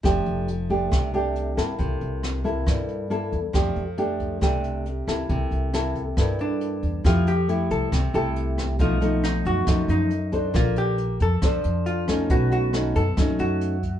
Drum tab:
HH |xxxxxxxx|xxxxxxxx|xxxxxxxx|xxxxxxxx|
SD |r---r--r|--r-r---|r---r--r|--r-r---|
BD |o--oo--o|o--oo--o|o--oo--o|o--oo--o|

HH |xxxxxxxx|xxxxxxxx|xxxxxxxx|xxxxxxxx|
SD |r---r--r|--r-r---|r---r--r|--r-r---|
BD |o--oo--o|o--oo--o|o--oo--o|o--oo--o|